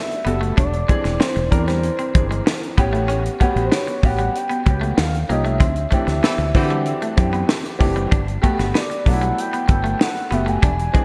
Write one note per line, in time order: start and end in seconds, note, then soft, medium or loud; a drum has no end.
0.00 0.26 G3 medium
0.00 0.26 B3 medium
0.00 0.26 F#4 medium
0.00 0.27 A4 medium
0.00 0.26 E5 medium
0.11 closed hi-hat soft
0.25 0.51 F#1 medium
0.25 0.57 G3 medium
0.25 0.38 B3 medium
0.25 0.58 B3 medium
0.25 0.58 F#4 medium
0.25 0.58 A4 medium
0.25 0.40 E5 medium
0.25 closed hi-hat medium
0.41 0.54 A3 medium
0.41 closed hi-hat soft
0.57 0.82 E1 medium
0.57 0.70 D4 medium
0.57 1.22 D5 loud
0.57 kick loud
0.57 closed hi-hat medium
0.73 closed hi-hat medium
0.88 1.37 E3 medium
0.88 1.02 G#3 medium
0.88 1.37 C4 medium
0.88 1.37 D4 medium
0.88 1.37 G#4 medium
0.88 kick medium
0.88 closed hi-hat medium
1.04 1.17 E1 medium
1.04 muted clean electric guitar stroke soft
1.04 snare soft
1.04 closed hi-hat medium
1.20 1.33 C4 medium
1.20 1.52 C5 medium
1.20 snare loud
1.36 1.49 E1 medium
1.36 muted clean electric guitar stroke soft
1.36 closed hi-hat soft
1.51 1.89 E2 medium
1.51 1.99 E3 medium
1.51 1.99 C4 medium
1.51 1.99 D4 medium
1.51 1.99 A#4 medium
1.51 1.68 D5 medium
1.51 kick medium
1.51 closed hi-hat medium
1.66 1.81 G3 medium
1.66 2.61 C5 medium
1.66 snare soft
1.66 closed hi-hat soft
1.83 closed hi-hat medium
1.99 2.12 C4 medium
1.99 closed hi-hat medium
2.14 2.40 G1 medium
2.14 2.62 E3 medium
2.14 2.62 C4 medium
2.14 2.62 D4 soft
2.14 2.63 G#4 medium
2.14 muted clean electric guitar stroke soft
2.14 kick loud
2.14 closed hi-hat medium
2.31 2.44 G#3 medium
2.31 closed hi-hat soft
2.46 muted clean electric guitar stroke soft
2.46 snare loud
2.63 closed hi-hat soft
2.78 3.27 A1 medium
2.78 2.91 B3 medium
2.78 3.29 B3 medium
2.78 3.29 C#4 medium
2.78 3.28 F#4 medium
2.78 3.29 G4 loud
2.78 kick medium
2.78 closed hi-hat medium
2.93 3.06 A3 medium
2.93 closed hi-hat soft
3.08 3.22 C#4 medium
3.08 closed hi-hat medium
3.25 closed hi-hat medium
3.40 3.53 A3 medium
3.40 3.88 B3 medium
3.40 3.88 C#4 medium
3.40 3.88 F#4 medium
3.40 3.89 G4 loud
3.40 kick medium
3.40 closed hi-hat medium
3.56 3.69 A1 medium
3.56 muted clean electric guitar stroke soft
3.56 closed hi-hat soft
3.65 3.75 C5 medium
3.72 3.85 B3 medium
3.72 4.06 C#5 medium
3.72 snare medium
3.87 muted clean electric guitar stroke soft
3.87 closed hi-hat soft
4.03 4.28 A1 medium
4.03 4.51 B3 medium
4.03 4.52 C#4 medium
4.03 4.51 F#4 medium
4.03 4.52 G4 medium
4.03 4.38 F#5 medium
4.03 kick medium
4.03 open hi-hat medium
4.19 4.32 G3 medium
4.19 closed hi-hat soft
4.35 4.67 G5 loud
4.35 closed hi-hat medium
4.49 4.63 B3 medium
4.49 closed hi-hat soft
4.66 4.92 C#2 medium
4.66 4.98 B3 medium
4.66 4.98 C#4 medium
4.66 4.98 F#4 medium
4.66 4.99 G4 medium
4.66 4.91 G5 medium
4.66 muted clean electric guitar stroke soft
4.66 kick loud
4.66 closed hi-hat medium
4.81 4.94 A3 medium
4.81 closed hi-hat soft
4.91 5.00 G5 medium
4.97 5.23 D#2 medium
4.97 5.30 F5 loud
4.97 muted clean electric guitar stroke soft
4.97 snare loud
5.15 closed hi-hat soft
5.29 5.60 C2 medium
5.29 5.61 F3 medium
5.29 5.42 A#3 medium
5.29 5.61 C#4 medium
5.29 5.61 D#4 medium
5.29 5.61 G4 medium
5.29 5.46 D#5 medium
5.29 closed hi-hat medium
5.45 5.58 A3 medium
5.45 7.80 E5 medium
5.45 closed hi-hat soft
5.60 5.85 D2 medium
5.60 5.73 C4 medium
5.60 kick loud
5.60 closed hi-hat medium
5.76 closed hi-hat medium
5.91 6.40 E3 medium
5.91 6.04 A3 medium
5.91 6.40 C4 medium
5.91 6.40 D4 medium
5.91 6.40 G4 medium
5.91 kick medium
5.91 closed hi-hat medium
6.07 6.20 D2 medium
6.07 muted clean electric guitar stroke soft
6.07 snare soft
6.07 closed hi-hat medium
6.23 6.33 E3 medium
6.23 6.33 A3 medium
6.23 6.36 B3 medium
6.23 6.33 C4 medium
6.23 6.33 A4 loud
6.23 snare medium
6.38 6.51 D2 medium
6.38 muted clean electric guitar stroke soft
6.38 closed hi-hat soft
6.54 6.92 D3 medium
6.54 6.75 E3 medium
6.54 7.02 E3 medium
6.54 6.74 A3 medium
6.54 6.75 C4 loud
6.54 7.02 C4 medium
6.54 7.03 D4 medium
6.54 6.62 F#4 medium
6.54 6.74 A4 medium
6.54 kick medium
6.54 open hi-hat medium
6.62 7.06 G4 loud
6.70 6.83 G3 medium
6.70 closed hi-hat soft
6.86 closed hi-hat medium
7.02 7.15 A3 medium
7.02 closed hi-hat soft
7.16 7.43 F#2 medium
7.16 7.64 E3 medium
7.16 7.65 C4 medium
7.16 7.65 D4 medium
7.16 7.65 G4 medium
7.16 muted clean electric guitar stroke soft
7.16 kick medium
7.16 closed hi-hat medium
7.33 7.46 B3 medium
7.33 closed hi-hat soft
7.49 muted clean electric guitar stroke soft
7.49 snare loud
7.65 closed hi-hat soft
7.79 8.05 F#1 medium
7.79 8.11 E3 medium
7.79 7.94 A3 medium
7.79 8.11 C4 medium
7.79 8.12 D4 medium
7.79 8.12 G4 medium
7.79 kick medium
7.79 open hi-hat medium
7.96 8.09 G3 medium
7.96 closed hi-hat soft
8.11 8.37 G1 medium
8.11 8.24 D4 medium
8.11 kick loud
8.11 closed hi-hat medium
8.28 closed hi-hat soft
8.42 8.90 A3 medium
8.42 8.56 A3 medium
8.42 8.90 B3 medium
8.42 8.90 F#4 medium
8.42 8.90 G4 loud
8.42 kick medium
8.42 closed hi-hat medium
8.59 8.72 G1 medium
8.59 muted clean electric guitar stroke soft
8.59 snare soft
8.59 closed hi-hat soft
8.74 8.87 B3 medium
8.74 9.05 D5 medium
8.74 snare medium
8.90 muted clean electric guitar stroke soft
8.90 closed hi-hat soft
9.05 9.31 B1 medium
9.05 9.53 F#3 medium
9.05 9.53 A3 medium
9.05 9.53 B3 medium
9.05 9.13 D4 medium
9.05 9.41 F#5 medium
9.05 kick medium
9.05 open hi-hat medium
9.13 9.57 E4 medium
9.21 9.34 G3 medium
9.21 closed hi-hat soft
9.38 9.70 G5 loud
9.38 closed hi-hat medium
9.53 9.66 B3 medium
9.53 closed hi-hat soft
9.67 9.94 G1 medium
9.67 10.16 F#3 medium
9.67 10.16 A3 medium
9.67 10.16 B3 medium
9.67 10.16 A4 medium
9.67 10.03 G5 medium
9.67 muted clean electric guitar stroke soft
9.67 kick loud
9.67 closed hi-hat medium
9.84 9.97 A3 medium
9.84 closed hi-hat soft
9.99 10.34 F#5 loud
9.99 muted clean electric guitar stroke soft
9.99 snare loud
10.17 closed hi-hat soft
10.31 10.56 F#1 medium
10.31 10.63 A3 medium
10.31 10.44 B3 medium
10.31 10.63 B3 medium
10.31 10.63 F#4 medium
10.31 10.63 G4 medium
10.31 10.50 E5 medium
10.31 closed hi-hat medium
10.46 10.59 A3 medium
10.46 11.05 G#5 loud
10.46 closed hi-hat soft
10.62 10.88 E1 loud
10.62 10.75 D4 medium
10.62 kick loud
10.62 closed hi-hat medium
10.79 closed hi-hat medium
10.93 11.05 E3 medium
10.93 11.05 G#3 medium
10.93 11.05 C4 medium
10.93 11.05 D4 medium
10.93 11.05 G#4 medium
10.93 kick medium
10.93 closed hi-hat medium